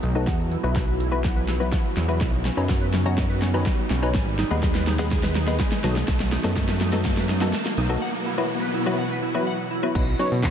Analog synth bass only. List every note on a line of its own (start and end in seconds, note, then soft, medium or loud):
0.03 0.29 B1 medium
0.27 0.57 E2 loud
0.64 1.73 B1 medium
1.97 2.22 E2 medium
2.21 2.51 B1 loud
2.57 3.66 F#2 medium
3.90 4.16 B1 medium
4.14 4.44 G#1 loud
4.51 5.60 D#2 medium
5.84 6.04 B1 medium
6.08 6.38 B1 loud
6.44 7.53 F#2 medium
7.77 7.97 B1 medium
9.95 10.15 B1 loud
10.32 10.50 B2 medium